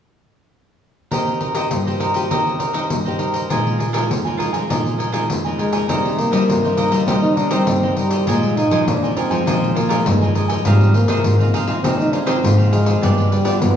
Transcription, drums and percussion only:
1.11 pandeiro medium
1.27 pandeiro soft
1.41 pandeiro soft
1.55 pandeiro medium
1.71 pandeiro medium
1.87 pandeiro soft
2.00 pandeiro medium
2.14 pandeiro medium
2.31 pandeiro medium
2.47 pandeiro soft
2.60 pandeiro medium
2.74 pandeiro medium
2.90 pandeiro medium
3.06 pandeiro soft
3.19 pandeiro soft
3.34 pandeiro soft
3.50 pandeiro medium
3.67 pandeiro soft
3.80 pandeiro soft
3.94 pandeiro medium
4.11 pandeiro medium
4.27 pandeiro soft
4.40 pandeiro medium
4.54 pandeiro medium
4.70 pandeiro medium
4.87 pandeiro soft
5.00 pandeiro medium
5.14 pandeiro medium
5.30 pandeiro medium
5.46 pandeiro soft
5.59 pandeiro soft
5.73 pandeiro medium
5.89 pandeiro medium
6.05 pandeiro soft
6.18 pandeiro soft
6.33 pandeiro medium
6.50 pandeiro medium
6.65 pandeiro soft
6.77 pandeiro medium
6.92 pandeiro medium
7.08 pandeiro medium
7.23 pandeiro soft
7.37 pandeiro medium
7.51 pandeiro medium
7.67 pandeiro medium
7.83 pandeiro soft
7.97 pandeiro soft
8.11 pandeiro medium
8.27 pandeiro medium
8.43 pandeiro soft
8.57 pandeiro soft
8.71 pandeiro medium
8.88 pandeiro medium
9.04 pandeiro soft
9.17 pandeiro medium
9.31 pandeiro medium
9.47 pandeiro medium
9.64 pandeiro soft
9.76 pandeiro medium
9.90 pandeiro medium
10.06 pandeiro medium
10.22 pandeiro soft
10.35 pandeiro soft
10.50 pandeiro medium
10.65 pandeiro medium
10.81 pandeiro soft
10.94 pandeiro soft
11.08 pandeiro medium
11.24 pandeiro medium
11.41 pandeiro soft
11.54 pandeiro medium
11.68 pandeiro medium
11.84 pandeiro medium
12.00 pandeiro soft
12.13 pandeiro medium
12.27 pandeiro medium
12.44 pandeiro medium
12.59 pandeiro soft
12.73 pandeiro medium
12.86 pandeiro medium
13.03 pandeiro medium
13.18 pandeiro soft
13.32 pandeiro soft
13.45 pandeiro medium
13.62 pandeiro medium

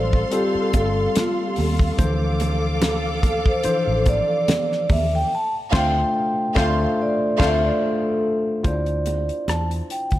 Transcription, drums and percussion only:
0.13 kick medium
0.32 closed hi-hat medium
0.73 kick medium
0.73 closed hi-hat medium
0.73 muted conga medium
1.15 snare loud
1.15 closed hi-hat loud
1.15 high conga medium
1.56 open hi-hat medium
1.56 high conga medium
1.79 kick medium
1.99 kick loud
1.99 closed hi-hat medium
1.99 muted conga soft
2.40 closed hi-hat medium
2.40 muted conga soft
2.82 snare loud
2.82 closed hi-hat medium
2.82 high conga medium
3.23 kick medium
3.23 closed hi-hat medium
3.23 muted conga soft
3.46 kick medium
3.64 closed hi-hat medium
4.06 kick medium
4.06 closed hi-hat medium
4.06 muted conga medium
4.48 snare loud
4.48 closed hi-hat loud
4.48 high conga medium
4.72 snare soft
4.89 kick medium
4.89 open hi-hat medium
4.89 high conga medium
5.72 kick loud
5.72 snare loud
5.72 crash medium
6.56 kick loud
6.56 snare loud
7.40 kick loud
7.40 snare loud
7.40 crash medium
8.64 kick medium
8.64 closed hi-hat medium
8.64 muted conga soft
8.86 closed hi-hat soft
9.06 closed hi-hat medium
9.06 muted conga soft
9.29 closed hi-hat soft
9.48 cross-stick medium
9.48 closed hi-hat medium
9.48 high conga medium
9.71 closed hi-hat soft
9.90 closed hi-hat medium
10.11 kick medium
10.11 closed hi-hat soft

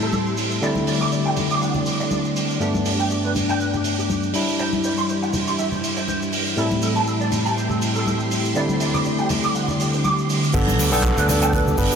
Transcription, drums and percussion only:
0.01 shaker soft
0.12 high conga medium
0.12 shaker medium
0.26 shaker soft
0.37 open hi-hat loud
0.37 high bongo soft
0.37 shaker medium
0.51 shaker soft
0.62 shaker medium
0.75 high conga medium
0.75 shaker soft
0.87 open hi-hat loud
0.87 shaker medium
1.01 shaker soft
1.12 shaker medium
1.26 shaker soft
1.36 open hi-hat loud
1.36 high bongo medium
1.36 high conga medium
1.36 low conga medium
1.36 shaker medium
1.50 open hi-hat medium
1.50 shaker soft
1.62 shaker soft
1.74 low conga medium
1.74 shaker soft
1.86 open hi-hat loud
1.86 shaker medium
2.00 shaker soft
2.11 high conga medium
2.11 shaker medium
2.25 shaker soft
2.36 open hi-hat loud
2.36 shaker medium
2.50 shaker soft
2.61 shaker medium
2.74 high conga medium
2.74 shaker soft
2.85 open hi-hat loud
2.85 shaker medium
2.99 shaker soft
3.10 shaker medium
3.24 shaker soft
3.35 open hi-hat medium
3.35 high bongo medium
3.35 high conga medium
3.35 low conga medium
3.35 shaker medium
3.49 shaker soft
3.60 shaker medium
3.73 low conga medium
3.73 shaker soft
3.84 open hi-hat medium
3.84 shaker medium
3.99 shaker soft
4.10 high conga medium
4.10 shaker medium
4.23 shaker soft
4.33 open hi-hat loud
4.33 high bongo soft
4.33 shaker medium
4.48 shaker medium
4.58 shaker medium
4.72 high conga medium
4.72 shaker soft
4.84 open hi-hat medium
4.84 shaker medium
4.98 shaker soft
5.09 shaker medium
5.23 shaker soft
5.33 open hi-hat medium
5.33 high bongo medium
5.33 low conga medium
5.33 shaker medium
5.47 open hi-hat medium
5.47 shaker soft
5.59 shaker medium
5.72 low conga medium
5.72 shaker soft
5.84 open hi-hat medium
5.84 shaker medium
5.97 shaker soft
6.08 high conga medium
6.08 shaker medium
6.22 shaker soft
6.33 open hi-hat loud
6.33 shaker medium
6.46 shaker medium
6.58 shaker medium
6.71 high conga medium
6.71 shaker soft
6.82 open hi-hat medium
6.82 shaker medium
6.95 shaker soft
7.07 shaker medium
7.21 shaker soft
7.32 open hi-hat medium
7.32 high bongo medium
7.32 low conga medium
7.32 shaker medium
7.46 shaker soft
7.58 shaker medium
7.70 low conga medium
7.70 shaker soft
7.82 open hi-hat loud
7.82 shaker medium
7.95 shaker soft
8.06 high conga medium
8.06 shaker medium
8.20 shaker soft
8.30 open hi-hat medium
8.30 high bongo soft
8.30 shaker medium
8.45 shaker medium
8.55 shaker medium
8.69 high conga medium
8.69 shaker soft
8.80 open hi-hat loud
8.80 shaker medium
8.94 low conga medium
8.94 shaker soft
9.04 high bongo soft
9.04 shaker soft
9.18 shaker soft
9.29 open hi-hat medium
9.29 high bongo medium
9.29 high conga medium
9.29 low conga medium
9.29 shaker medium
9.43 open hi-hat medium
9.43 shaker soft
9.55 shaker medium
9.68 low conga medium
9.68 shaker soft
9.80 open hi-hat medium
9.80 shaker medium
9.93 shaker soft
10.04 high conga medium
10.04 shaker medium
10.18 shaker soft
10.30 open hi-hat medium
10.30 shaker medium
10.44 shaker soft
10.54 kick loud
10.54 closed hi-hat loud
10.54 crash loud
10.54 shaker medium
10.67 high conga medium
10.67 shaker soft
10.79 open hi-hat loud
10.79 shaker medium
10.93 shaker medium
11.03 kick loud
11.03 clap loud
11.03 closed hi-hat medium
11.03 shaker medium
11.17 closed hi-hat medium
11.17 shaker soft
11.28 open hi-hat loud
11.28 high bongo medium
11.28 high conga medium
11.28 low conga medium
11.28 shaker medium
11.42 closed hi-hat medium
11.42 shaker medium
11.53 kick loud
11.53 closed hi-hat loud
11.53 shaker medium
11.67 low conga medium
11.67 shaker soft
11.78 kick medium
11.78 open hi-hat loud
11.78 shaker medium
11.91 closed hi-hat soft
11.91 shaker medium

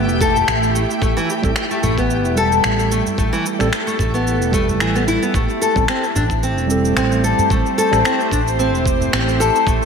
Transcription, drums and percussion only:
0.09 cabasa soft
0.21 kick loud
0.21 cabasa medium
0.36 udu medium
0.36 cabasa soft
0.48 finger snap medium
0.48 cabasa soft
0.63 cabasa soft
0.76 cabasa medium
0.91 cabasa soft
1.02 kick loud
1.02 cabasa soft
1.18 cabasa soft
1.30 cabasa medium
1.44 kick loud
1.44 cabasa soft
1.56 finger snap medium
1.56 cabasa soft
1.71 cabasa soft
1.83 udu medium
1.83 cabasa medium
1.98 kick medium
1.98 cabasa soft
2.10 cabasa soft
2.25 cabasa soft
2.37 cabasa medium
2.52 cabasa soft
2.64 finger snap loud
2.64 cabasa soft
2.79 cabasa soft
2.92 cabasa medium
3.06 udu medium
3.06 cabasa soft
3.18 kick loud
3.18 cabasa soft
3.34 cabasa soft
3.46 cabasa medium
3.60 finger snap soft
3.60 cabasa soft
3.73 finger snap medium
3.73 cabasa soft
3.88 cabasa soft
3.99 kick medium
3.99 udu medium
3.99 cabasa medium
4.15 cabasa soft
4.27 cabasa soft
4.42 cabasa soft
4.53 kick loud
4.53 cabasa medium
4.68 udu medium
4.68 cabasa soft
4.80 finger snap loud
4.80 cabasa soft
4.96 cabasa soft
5.08 cabasa medium
5.23 cabasa soft
5.34 kick loud
5.34 cabasa soft
5.50 cabasa soft
5.62 cabasa medium
5.76 kick loud
5.76 cabasa soft
5.88 finger snap medium
5.88 cabasa soft
6.04 cabasa soft
6.15 udu medium
6.15 cabasa medium
6.30 kick medium
6.30 cabasa soft
6.43 cabasa soft
6.58 cabasa soft
6.70 cabasa medium
6.85 cabasa soft
6.97 finger snap loud
6.97 cabasa soft
7.12 cabasa soft
7.24 cabasa medium
7.38 udu medium
7.38 cabasa soft
7.50 kick loud
7.50 cabasa soft
7.66 cabasa soft
7.79 cabasa medium
7.93 finger snap soft
7.93 cabasa soft
8.05 finger snap medium
8.05 cabasa soft
8.20 cabasa soft
8.31 kick medium
8.31 cabasa medium
8.48 cabasa soft
8.60 cabasa soft
8.75 cabasa soft
8.86 kick loud
8.86 cabasa medium
9.01 udu medium
9.01 cabasa soft
9.13 finger snap loud
9.13 cabasa soft
9.29 cabasa soft
9.41 cabasa medium
9.56 cabasa soft
9.67 kick loud
9.67 cabasa soft

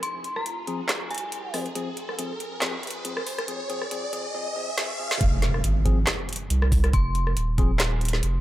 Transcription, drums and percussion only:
0.03 closed hi-hat medium
0.24 closed hi-hat soft
0.36 cross-stick medium
0.46 closed hi-hat medium
0.67 closed hi-hat medium
0.89 snare loud
0.89 clap medium
0.89 closed hi-hat medium
1.11 closed hi-hat soft
1.14 closed hi-hat medium
1.18 closed hi-hat medium
1.32 closed hi-hat medium
1.54 cross-stick soft
1.54 open hi-hat medium
1.66 closed hi-hat soft
1.75 closed hi-hat medium
1.97 closed hi-hat medium
2.09 cross-stick medium
2.19 closed hi-hat medium
2.40 closed hi-hat medium
2.62 snare loud
2.62 clap medium
2.62 closed hi-hat medium
2.83 closed hi-hat medium
2.87 closed hi-hat medium
2.91 closed hi-hat medium
3.05 closed hi-hat medium
3.17 cross-stick medium
3.27 open hi-hat loud
3.38 cross-stick medium
3.38 closed hi-hat soft
3.48 closed hi-hat medium
3.70 closed hi-hat medium
3.82 cross-stick medium
3.91 closed hi-hat medium
4.13 closed hi-hat medium
4.78 snare loud
5.11 snare medium
5.21 kick loud
5.21 closed hi-hat medium
5.42 snare soft
5.42 closed hi-hat medium
5.54 cross-stick medium
5.64 closed hi-hat medium
5.86 kick medium
5.86 closed hi-hat medium
6.07 snare loud
6.07 clap medium
6.07 closed hi-hat medium
6.29 closed hi-hat soft
6.33 closed hi-hat medium
6.36 closed hi-hat medium
6.50 closed hi-hat medium
6.62 cross-stick medium
6.72 kick loud
6.72 open hi-hat medium
6.84 cross-stick medium
6.84 closed hi-hat soft
6.93 kick loud
6.93 closed hi-hat medium
7.15 closed hi-hat medium
7.27 cross-stick medium
7.37 closed hi-hat medium
7.58 kick loud
7.58 closed hi-hat medium
7.80 snare loud
7.80 clap medium
7.80 closed hi-hat medium
8.01 closed hi-hat soft
8.05 closed hi-hat medium
8.08 closed hi-hat medium
8.13 snare soft
8.23 closed hi-hat medium

